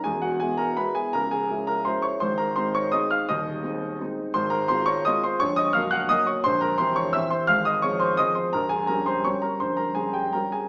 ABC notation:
X:1
M:3/4
L:1/8
Q:1/4=169
K:Ab
V:1 name="Grand piano"
[^G^g] [_G_g] [^G^g] [Bb] [=B=b] [Gg] | [Bb] [Aa]2 [Bb] [cc'] [dd'] | [cc'] [Bb] [cc'] [dd'] [ee'] [ff'] | [ee']4 z2 |
[K:Fm] [cc'] [Bb] [cc'] [dd'] [ee'] [cc'] | [dd'] [ee'] [ff'] [_g_g'] [ee'] [dd'] | [cc'] [Bb] [cc'] [dd'] [=e=e'] [cc'] | [ff'] [ee'] [dd'] [cc'] [ee'] [cc'] |
[Bb] [Aa] [Bb] [cc'] [dd'] [Bb] | [cc'] [Bb] [Aa] [Gg] [Bb] [Aa] |]
V:2 name="Grand piano"
[=E,,,=E,,]2 [^G,=B,=E]2 [G,B,E]2 | [D,,,D,,]2 [A,D_F]2 [A,DF]2 | [A,,,A,,]2 [A,CE]2 [A,CE]2 | [E,,,E,,]2 [A,CE]2 [A,CE]2 |
[K:Fm] [A,,,A,,]2 [A,CF]2 [A,CF]2 | [B,,,,B,,,]2 [_G,B,B]2 [G,B,B]2 | [B,,,,B,,,]2 [=E,CG]2 [E,CG]2 | [A,,,A,,]2 [F,CA]2 [F,CA]2 |
[B,,,,B,,,]2 [G,DG]2 [G,DG]2 | [B,,,,B,,,]2 [G,DG]2 [G,DG]2 |]